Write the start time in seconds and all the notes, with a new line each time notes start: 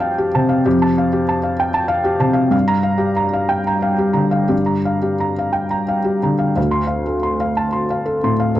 Already playing: F2 G4 G5 A5
0.00 F5
0.18 G4
0.35 C3 A5
0.49 F5
0.66 F2 G4
0.82 A5
0.98 F5
1.13 G4
1.29 A5
1.43 F5
1.60 G5
1.74 A5
1.88 F5
2.04 G4
2.20 C3 A5
2.33 F5
2.51 G2 F5
2.68 A#5
2.83 F5
2.98 G4
3.17 A#5
3.33 F5
3.49 G5
3.67 A#5
3.82 F5
3.98 G4
4.13 D3 A#5
4.31 F5
4.48 G2 G4
4.66 A#5
4.85 F5
5.02 G4
5.20 A#5
5.39 F5
5.53 G5
5.71 A#5
5.88 F5
6.04 G4
6.23 D3 A#5
6.39 F5
6.56 D2 F5
6.71 C6
6.87 F5
7.06 A4
7.23 C6
7.40 F5
7.57 A5
7.73 C6
7.90 F5
8.06 A4
8.23 A2 C6
8.40 F5
8.55 D2 A4